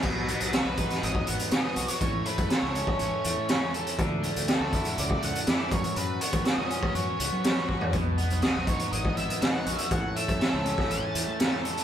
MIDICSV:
0, 0, Header, 1, 6, 480
1, 0, Start_track
1, 0, Tempo, 493827
1, 36, Time_signature, 4, 2, 24, 8
1, 11508, End_track
2, 0, Start_track
2, 0, Title_t, "Lead electric guitar"
2, 0, Program_c, 0, 29
2, 535, Note_on_c, 0, 71, 71
2, 1006, Note_on_c, 0, 75, 79
2, 1020, Note_off_c, 0, 71, 0
2, 1244, Note_on_c, 0, 78, 76
2, 1248, Note_off_c, 0, 75, 0
2, 1307, Note_off_c, 0, 78, 0
2, 1480, Note_on_c, 0, 75, 78
2, 1952, Note_off_c, 0, 75, 0
2, 1956, Note_on_c, 0, 73, 82
2, 2195, Note_on_c, 0, 71, 72
2, 2203, Note_off_c, 0, 73, 0
2, 2429, Note_on_c, 0, 73, 70
2, 2443, Note_off_c, 0, 71, 0
2, 2899, Note_off_c, 0, 73, 0
2, 2910, Note_on_c, 0, 73, 66
2, 3594, Note_off_c, 0, 73, 0
2, 4365, Note_on_c, 0, 69, 73
2, 4853, Note_on_c, 0, 74, 85
2, 4854, Note_off_c, 0, 69, 0
2, 5091, Note_off_c, 0, 74, 0
2, 5092, Note_on_c, 0, 78, 85
2, 5331, Note_off_c, 0, 78, 0
2, 5337, Note_on_c, 0, 74, 76
2, 5550, Note_off_c, 0, 74, 0
2, 5563, Note_on_c, 0, 73, 73
2, 5797, Note_on_c, 0, 71, 75
2, 5806, Note_off_c, 0, 73, 0
2, 6020, Note_off_c, 0, 71, 0
2, 6040, Note_on_c, 0, 73, 70
2, 6272, Note_off_c, 0, 73, 0
2, 6276, Note_on_c, 0, 75, 77
2, 6754, Note_off_c, 0, 75, 0
2, 6757, Note_on_c, 0, 73, 66
2, 7437, Note_off_c, 0, 73, 0
2, 8191, Note_on_c, 0, 75, 66
2, 8439, Note_off_c, 0, 75, 0
2, 8442, Note_on_c, 0, 73, 66
2, 8669, Note_off_c, 0, 73, 0
2, 8673, Note_on_c, 0, 75, 72
2, 8912, Note_off_c, 0, 75, 0
2, 8916, Note_on_c, 0, 76, 67
2, 9160, Note_on_c, 0, 78, 73
2, 9163, Note_off_c, 0, 76, 0
2, 9605, Note_off_c, 0, 78, 0
2, 9647, Note_on_c, 0, 78, 84
2, 9880, Note_on_c, 0, 76, 85
2, 9889, Note_off_c, 0, 78, 0
2, 10609, Note_on_c, 0, 81, 83
2, 10620, Note_off_c, 0, 76, 0
2, 11285, Note_off_c, 0, 81, 0
2, 11508, End_track
3, 0, Start_track
3, 0, Title_t, "Harmonium"
3, 0, Program_c, 1, 20
3, 38, Note_on_c, 1, 66, 54
3, 40, Note_on_c, 1, 71, 67
3, 41, Note_on_c, 1, 63, 54
3, 45, Note_on_c, 1, 59, 61
3, 1938, Note_off_c, 1, 66, 0
3, 1939, Note_off_c, 1, 63, 0
3, 1939, Note_off_c, 1, 71, 0
3, 1941, Note_off_c, 1, 59, 0
3, 1961, Note_on_c, 1, 73, 69
3, 1964, Note_on_c, 1, 64, 58
3, 1964, Note_on_c, 1, 69, 56
3, 1966, Note_on_c, 1, 61, 59
3, 3859, Note_off_c, 1, 73, 0
3, 3860, Note_off_c, 1, 69, 0
3, 3861, Note_off_c, 1, 64, 0
3, 3862, Note_off_c, 1, 61, 0
3, 3875, Note_on_c, 1, 69, 57
3, 3879, Note_on_c, 1, 64, 57
3, 3879, Note_on_c, 1, 74, 64
3, 3881, Note_on_c, 1, 66, 58
3, 5538, Note_off_c, 1, 69, 0
3, 5540, Note_off_c, 1, 64, 0
3, 5540, Note_off_c, 1, 74, 0
3, 5544, Note_on_c, 1, 71, 53
3, 5548, Note_on_c, 1, 73, 64
3, 5551, Note_on_c, 1, 61, 62
3, 7690, Note_off_c, 1, 73, 0
3, 7691, Note_off_c, 1, 61, 0
3, 7697, Note_on_c, 1, 63, 55
3, 7704, Note_on_c, 1, 75, 68
3, 9592, Note_off_c, 1, 71, 0
3, 9600, Note_off_c, 1, 66, 0
3, 9607, Note_off_c, 1, 63, 0
3, 9611, Note_off_c, 1, 75, 0
3, 9633, Note_on_c, 1, 73, 71
3, 9635, Note_on_c, 1, 64, 56
3, 9638, Note_on_c, 1, 69, 56
3, 9641, Note_on_c, 1, 61, 60
3, 11508, Note_off_c, 1, 61, 0
3, 11508, Note_off_c, 1, 64, 0
3, 11508, Note_off_c, 1, 69, 0
3, 11508, Note_off_c, 1, 73, 0
3, 11508, End_track
4, 0, Start_track
4, 0, Title_t, "Overdriven electric guitar"
4, 0, Program_c, 2, 29
4, 33, Note_on_c, 2, 47, 58
4, 280, Note_on_c, 2, 59, 54
4, 517, Note_on_c, 2, 66, 66
4, 756, Note_on_c, 2, 63, 61
4, 993, Note_on_c, 2, 54, 57
4, 1223, Note_off_c, 2, 59, 0
4, 1234, Note_off_c, 2, 47, 0
4, 1235, Note_on_c, 2, 59, 55
4, 1463, Note_off_c, 2, 63, 0
4, 1475, Note_on_c, 2, 63, 58
4, 1699, Note_off_c, 2, 66, 0
4, 1711, Note_on_c, 2, 66, 62
4, 1947, Note_on_c, 2, 45, 60
4, 1953, Note_off_c, 2, 66, 0
4, 1955, Note_off_c, 2, 54, 0
4, 1955, Note_off_c, 2, 59, 0
4, 1955, Note_off_c, 2, 63, 0
4, 2191, Note_on_c, 2, 57, 53
4, 2432, Note_on_c, 2, 69, 67
4, 2672, Note_on_c, 2, 61, 60
4, 2913, Note_on_c, 2, 52, 56
4, 3144, Note_off_c, 2, 57, 0
4, 3151, Note_off_c, 2, 45, 0
4, 3156, Note_on_c, 2, 57, 57
4, 3385, Note_off_c, 2, 61, 0
4, 3397, Note_on_c, 2, 61, 61
4, 3628, Note_off_c, 2, 69, 0
4, 3640, Note_on_c, 2, 69, 59
4, 3873, Note_off_c, 2, 52, 0
4, 3876, Note_off_c, 2, 57, 0
4, 3876, Note_off_c, 2, 61, 0
4, 3877, Note_on_c, 2, 50, 58
4, 3878, Note_off_c, 2, 69, 0
4, 4111, Note_on_c, 2, 57, 56
4, 4359, Note_on_c, 2, 66, 66
4, 4592, Note_on_c, 2, 64, 64
4, 4823, Note_off_c, 2, 50, 0
4, 4835, Note_on_c, 2, 50, 59
4, 5059, Note_off_c, 2, 57, 0
4, 5070, Note_on_c, 2, 57, 56
4, 5304, Note_off_c, 2, 64, 0
4, 5316, Note_on_c, 2, 64, 61
4, 5553, Note_off_c, 2, 57, 0
4, 5555, Note_off_c, 2, 50, 0
4, 5555, Note_off_c, 2, 64, 0
4, 5560, Note_on_c, 2, 42, 57
4, 5786, Note_off_c, 2, 42, 0
4, 5797, Note_on_c, 2, 42, 57
4, 6037, Note_on_c, 2, 59, 51
4, 6267, Note_off_c, 2, 66, 0
4, 6271, Note_on_c, 2, 66, 69
4, 6512, Note_on_c, 2, 61, 61
4, 6749, Note_on_c, 2, 54, 58
4, 6978, Note_off_c, 2, 59, 0
4, 6990, Note_on_c, 2, 59, 58
4, 6996, Note_off_c, 2, 42, 0
4, 7219, Note_off_c, 2, 61, 0
4, 7230, Note_on_c, 2, 61, 57
4, 7457, Note_off_c, 2, 66, 0
4, 7468, Note_on_c, 2, 66, 63
4, 7706, Note_on_c, 2, 47, 57
4, 7712, Note_off_c, 2, 54, 0
4, 7712, Note_off_c, 2, 66, 0
4, 7713, Note_off_c, 2, 59, 0
4, 7713, Note_off_c, 2, 61, 0
4, 7946, Note_on_c, 2, 59, 53
4, 8190, Note_on_c, 2, 66, 65
4, 8429, Note_on_c, 2, 63, 62
4, 8671, Note_on_c, 2, 54, 61
4, 8907, Note_off_c, 2, 59, 0
4, 8911, Note_off_c, 2, 47, 0
4, 8918, Note_on_c, 2, 59, 58
4, 9147, Note_off_c, 2, 63, 0
4, 9158, Note_on_c, 2, 63, 58
4, 9389, Note_off_c, 2, 66, 0
4, 9401, Note_on_c, 2, 66, 64
4, 9629, Note_on_c, 2, 45, 60
4, 9634, Note_off_c, 2, 54, 0
4, 9637, Note_off_c, 2, 59, 0
4, 9637, Note_off_c, 2, 63, 0
4, 9638, Note_off_c, 2, 66, 0
4, 9869, Note_on_c, 2, 57, 54
4, 10112, Note_on_c, 2, 69, 68
4, 10349, Note_on_c, 2, 61, 62
4, 10597, Note_on_c, 2, 52, 60
4, 10823, Note_off_c, 2, 57, 0
4, 10834, Note_off_c, 2, 45, 0
4, 10835, Note_on_c, 2, 57, 61
4, 11064, Note_off_c, 2, 61, 0
4, 11075, Note_on_c, 2, 61, 64
4, 11299, Note_off_c, 2, 69, 0
4, 11311, Note_on_c, 2, 69, 63
4, 11508, Note_off_c, 2, 52, 0
4, 11508, Note_off_c, 2, 57, 0
4, 11508, Note_off_c, 2, 61, 0
4, 11508, Note_off_c, 2, 69, 0
4, 11508, End_track
5, 0, Start_track
5, 0, Title_t, "Fingered electric bass"
5, 0, Program_c, 3, 33
5, 37, Note_on_c, 3, 35, 82
5, 314, Note_off_c, 3, 35, 0
5, 395, Note_on_c, 3, 35, 73
5, 580, Note_off_c, 3, 35, 0
5, 631, Note_on_c, 3, 35, 71
5, 818, Note_off_c, 3, 35, 0
5, 997, Note_on_c, 3, 32, 82
5, 1182, Note_off_c, 3, 32, 0
5, 1236, Note_on_c, 3, 32, 68
5, 1329, Note_off_c, 3, 32, 0
5, 1471, Note_on_c, 3, 47, 75
5, 1566, Note_off_c, 3, 47, 0
5, 1713, Note_on_c, 3, 35, 75
5, 1807, Note_off_c, 3, 35, 0
5, 1952, Note_on_c, 3, 33, 80
5, 2139, Note_off_c, 3, 33, 0
5, 2313, Note_on_c, 3, 42, 69
5, 2406, Note_off_c, 3, 42, 0
5, 2551, Note_on_c, 3, 37, 74
5, 2738, Note_off_c, 3, 37, 0
5, 2914, Note_on_c, 3, 33, 72
5, 3007, Note_off_c, 3, 33, 0
5, 3156, Note_on_c, 3, 40, 81
5, 3248, Note_off_c, 3, 40, 0
5, 3276, Note_on_c, 3, 45, 72
5, 3461, Note_off_c, 3, 45, 0
5, 3874, Note_on_c, 3, 38, 79
5, 4153, Note_off_c, 3, 38, 0
5, 4239, Note_on_c, 3, 38, 69
5, 4423, Note_off_c, 3, 38, 0
5, 4471, Note_on_c, 3, 38, 70
5, 4658, Note_off_c, 3, 38, 0
5, 4840, Note_on_c, 3, 37, 82
5, 5023, Note_off_c, 3, 37, 0
5, 5078, Note_on_c, 3, 37, 65
5, 5170, Note_off_c, 3, 37, 0
5, 5318, Note_on_c, 3, 41, 77
5, 5410, Note_off_c, 3, 41, 0
5, 5557, Note_on_c, 3, 42, 80
5, 5649, Note_off_c, 3, 42, 0
5, 5794, Note_on_c, 3, 42, 78
5, 5980, Note_off_c, 3, 42, 0
5, 6156, Note_on_c, 3, 51, 70
5, 6248, Note_off_c, 3, 51, 0
5, 6392, Note_on_c, 3, 46, 70
5, 6579, Note_off_c, 3, 46, 0
5, 6753, Note_on_c, 3, 42, 74
5, 6846, Note_off_c, 3, 42, 0
5, 6991, Note_on_c, 3, 37, 73
5, 7085, Note_off_c, 3, 37, 0
5, 7116, Note_on_c, 3, 54, 73
5, 7301, Note_off_c, 3, 54, 0
5, 7711, Note_on_c, 3, 35, 77
5, 7990, Note_off_c, 3, 35, 0
5, 8066, Note_on_c, 3, 35, 68
5, 8255, Note_off_c, 3, 35, 0
5, 8312, Note_on_c, 3, 35, 73
5, 8499, Note_off_c, 3, 35, 0
5, 8670, Note_on_c, 3, 32, 88
5, 8857, Note_off_c, 3, 32, 0
5, 8911, Note_on_c, 3, 32, 71
5, 9005, Note_off_c, 3, 32, 0
5, 9151, Note_on_c, 3, 47, 76
5, 9245, Note_off_c, 3, 47, 0
5, 9393, Note_on_c, 3, 34, 81
5, 9487, Note_off_c, 3, 34, 0
5, 9631, Note_on_c, 3, 33, 84
5, 9818, Note_off_c, 3, 33, 0
5, 9998, Note_on_c, 3, 42, 73
5, 10090, Note_off_c, 3, 42, 0
5, 10237, Note_on_c, 3, 37, 72
5, 10422, Note_off_c, 3, 37, 0
5, 10597, Note_on_c, 3, 33, 74
5, 10690, Note_off_c, 3, 33, 0
5, 10835, Note_on_c, 3, 40, 77
5, 10928, Note_off_c, 3, 40, 0
5, 10960, Note_on_c, 3, 45, 73
5, 11144, Note_off_c, 3, 45, 0
5, 11508, End_track
6, 0, Start_track
6, 0, Title_t, "Drums"
6, 24, Note_on_c, 9, 49, 71
6, 34, Note_on_c, 9, 36, 95
6, 122, Note_off_c, 9, 49, 0
6, 132, Note_off_c, 9, 36, 0
6, 274, Note_on_c, 9, 42, 53
6, 372, Note_off_c, 9, 42, 0
6, 390, Note_on_c, 9, 42, 50
6, 487, Note_off_c, 9, 42, 0
6, 512, Note_on_c, 9, 42, 50
6, 521, Note_on_c, 9, 38, 92
6, 609, Note_off_c, 9, 42, 0
6, 618, Note_off_c, 9, 38, 0
6, 751, Note_on_c, 9, 42, 57
6, 757, Note_on_c, 9, 36, 68
6, 848, Note_off_c, 9, 42, 0
6, 854, Note_off_c, 9, 36, 0
6, 876, Note_on_c, 9, 42, 50
6, 885, Note_on_c, 9, 38, 27
6, 973, Note_off_c, 9, 42, 0
6, 982, Note_off_c, 9, 38, 0
6, 1000, Note_on_c, 9, 42, 51
6, 1097, Note_off_c, 9, 42, 0
6, 1116, Note_on_c, 9, 36, 70
6, 1213, Note_off_c, 9, 36, 0
6, 1232, Note_on_c, 9, 42, 55
6, 1329, Note_off_c, 9, 42, 0
6, 1353, Note_on_c, 9, 42, 49
6, 1451, Note_off_c, 9, 42, 0
6, 1467, Note_on_c, 9, 42, 53
6, 1476, Note_on_c, 9, 38, 84
6, 1565, Note_off_c, 9, 42, 0
6, 1573, Note_off_c, 9, 38, 0
6, 1709, Note_on_c, 9, 42, 51
6, 1807, Note_off_c, 9, 42, 0
6, 1827, Note_on_c, 9, 42, 53
6, 1924, Note_off_c, 9, 42, 0
6, 1951, Note_on_c, 9, 42, 51
6, 1953, Note_on_c, 9, 36, 91
6, 2048, Note_off_c, 9, 42, 0
6, 2051, Note_off_c, 9, 36, 0
6, 2191, Note_on_c, 9, 42, 52
6, 2288, Note_off_c, 9, 42, 0
6, 2312, Note_on_c, 9, 42, 52
6, 2315, Note_on_c, 9, 36, 70
6, 2409, Note_off_c, 9, 42, 0
6, 2412, Note_off_c, 9, 36, 0
6, 2430, Note_on_c, 9, 42, 46
6, 2439, Note_on_c, 9, 38, 92
6, 2527, Note_off_c, 9, 42, 0
6, 2536, Note_off_c, 9, 38, 0
6, 2673, Note_on_c, 9, 42, 52
6, 2771, Note_off_c, 9, 42, 0
6, 2792, Note_on_c, 9, 36, 72
6, 2889, Note_off_c, 9, 36, 0
6, 2907, Note_on_c, 9, 42, 47
6, 3004, Note_off_c, 9, 42, 0
6, 3152, Note_on_c, 9, 42, 48
6, 3249, Note_off_c, 9, 42, 0
6, 3388, Note_on_c, 9, 42, 46
6, 3396, Note_on_c, 9, 38, 90
6, 3485, Note_off_c, 9, 42, 0
6, 3493, Note_off_c, 9, 38, 0
6, 3636, Note_on_c, 9, 42, 51
6, 3733, Note_off_c, 9, 42, 0
6, 3757, Note_on_c, 9, 42, 50
6, 3854, Note_off_c, 9, 42, 0
6, 3874, Note_on_c, 9, 42, 54
6, 3875, Note_on_c, 9, 36, 95
6, 3972, Note_off_c, 9, 36, 0
6, 3972, Note_off_c, 9, 42, 0
6, 4114, Note_on_c, 9, 42, 52
6, 4212, Note_off_c, 9, 42, 0
6, 4239, Note_on_c, 9, 42, 50
6, 4336, Note_off_c, 9, 42, 0
6, 4351, Note_on_c, 9, 42, 53
6, 4360, Note_on_c, 9, 38, 87
6, 4448, Note_off_c, 9, 42, 0
6, 4457, Note_off_c, 9, 38, 0
6, 4593, Note_on_c, 9, 42, 55
6, 4595, Note_on_c, 9, 36, 70
6, 4690, Note_off_c, 9, 42, 0
6, 4692, Note_off_c, 9, 36, 0
6, 4712, Note_on_c, 9, 42, 51
6, 4809, Note_off_c, 9, 42, 0
6, 4837, Note_on_c, 9, 42, 57
6, 4934, Note_off_c, 9, 42, 0
6, 4957, Note_on_c, 9, 36, 71
6, 5054, Note_off_c, 9, 36, 0
6, 5078, Note_on_c, 9, 42, 59
6, 5175, Note_off_c, 9, 42, 0
6, 5202, Note_on_c, 9, 42, 51
6, 5300, Note_off_c, 9, 42, 0
6, 5313, Note_on_c, 9, 42, 54
6, 5322, Note_on_c, 9, 38, 90
6, 5410, Note_off_c, 9, 42, 0
6, 5419, Note_off_c, 9, 38, 0
6, 5552, Note_on_c, 9, 42, 54
6, 5555, Note_on_c, 9, 36, 85
6, 5649, Note_off_c, 9, 42, 0
6, 5652, Note_off_c, 9, 36, 0
6, 5675, Note_on_c, 9, 42, 54
6, 5772, Note_off_c, 9, 42, 0
6, 5793, Note_on_c, 9, 42, 52
6, 5891, Note_off_c, 9, 42, 0
6, 6034, Note_on_c, 9, 42, 55
6, 6131, Note_off_c, 9, 42, 0
6, 6148, Note_on_c, 9, 42, 52
6, 6153, Note_on_c, 9, 36, 70
6, 6245, Note_off_c, 9, 42, 0
6, 6250, Note_off_c, 9, 36, 0
6, 6270, Note_on_c, 9, 42, 54
6, 6279, Note_on_c, 9, 38, 89
6, 6367, Note_off_c, 9, 42, 0
6, 6376, Note_off_c, 9, 38, 0
6, 6516, Note_on_c, 9, 42, 54
6, 6613, Note_off_c, 9, 42, 0
6, 6635, Note_on_c, 9, 36, 69
6, 6732, Note_off_c, 9, 36, 0
6, 6755, Note_on_c, 9, 42, 52
6, 6852, Note_off_c, 9, 42, 0
6, 6995, Note_on_c, 9, 42, 53
6, 7092, Note_off_c, 9, 42, 0
6, 7232, Note_on_c, 9, 42, 46
6, 7241, Note_on_c, 9, 38, 94
6, 7329, Note_off_c, 9, 42, 0
6, 7338, Note_off_c, 9, 38, 0
6, 7473, Note_on_c, 9, 36, 46
6, 7570, Note_off_c, 9, 36, 0
6, 7590, Note_on_c, 9, 43, 67
6, 7687, Note_off_c, 9, 43, 0
6, 7705, Note_on_c, 9, 42, 50
6, 7710, Note_on_c, 9, 36, 93
6, 7802, Note_off_c, 9, 42, 0
6, 7807, Note_off_c, 9, 36, 0
6, 7949, Note_on_c, 9, 42, 50
6, 8046, Note_off_c, 9, 42, 0
6, 8068, Note_on_c, 9, 42, 50
6, 8166, Note_off_c, 9, 42, 0
6, 8183, Note_on_c, 9, 42, 48
6, 8192, Note_on_c, 9, 38, 91
6, 8280, Note_off_c, 9, 42, 0
6, 8289, Note_off_c, 9, 38, 0
6, 8428, Note_on_c, 9, 42, 54
6, 8430, Note_on_c, 9, 36, 75
6, 8526, Note_off_c, 9, 42, 0
6, 8527, Note_off_c, 9, 36, 0
6, 8548, Note_on_c, 9, 42, 54
6, 8645, Note_off_c, 9, 42, 0
6, 8675, Note_on_c, 9, 42, 54
6, 8772, Note_off_c, 9, 42, 0
6, 8794, Note_on_c, 9, 36, 72
6, 8891, Note_off_c, 9, 36, 0
6, 8911, Note_on_c, 9, 42, 56
6, 9008, Note_off_c, 9, 42, 0
6, 9039, Note_on_c, 9, 42, 51
6, 9136, Note_off_c, 9, 42, 0
6, 9153, Note_on_c, 9, 42, 52
6, 9162, Note_on_c, 9, 38, 90
6, 9250, Note_off_c, 9, 42, 0
6, 9259, Note_off_c, 9, 38, 0
6, 9393, Note_on_c, 9, 42, 58
6, 9490, Note_off_c, 9, 42, 0
6, 9510, Note_on_c, 9, 42, 59
6, 9607, Note_off_c, 9, 42, 0
6, 9630, Note_on_c, 9, 42, 54
6, 9634, Note_on_c, 9, 36, 92
6, 9727, Note_off_c, 9, 42, 0
6, 9731, Note_off_c, 9, 36, 0
6, 9878, Note_on_c, 9, 42, 58
6, 9975, Note_off_c, 9, 42, 0
6, 9996, Note_on_c, 9, 42, 54
6, 9997, Note_on_c, 9, 36, 70
6, 10093, Note_off_c, 9, 42, 0
6, 10094, Note_off_c, 9, 36, 0
6, 10117, Note_on_c, 9, 42, 52
6, 10126, Note_on_c, 9, 38, 96
6, 10214, Note_off_c, 9, 42, 0
6, 10223, Note_off_c, 9, 38, 0
6, 10357, Note_on_c, 9, 42, 55
6, 10454, Note_off_c, 9, 42, 0
6, 10479, Note_on_c, 9, 36, 77
6, 10490, Note_on_c, 9, 38, 27
6, 10576, Note_off_c, 9, 36, 0
6, 10588, Note_off_c, 9, 38, 0
6, 10599, Note_on_c, 9, 42, 52
6, 10697, Note_off_c, 9, 42, 0
6, 10837, Note_on_c, 9, 42, 53
6, 10934, Note_off_c, 9, 42, 0
6, 11076, Note_on_c, 9, 42, 51
6, 11085, Note_on_c, 9, 38, 92
6, 11174, Note_off_c, 9, 42, 0
6, 11182, Note_off_c, 9, 38, 0
6, 11323, Note_on_c, 9, 42, 51
6, 11420, Note_off_c, 9, 42, 0
6, 11442, Note_on_c, 9, 42, 50
6, 11508, Note_off_c, 9, 42, 0
6, 11508, End_track
0, 0, End_of_file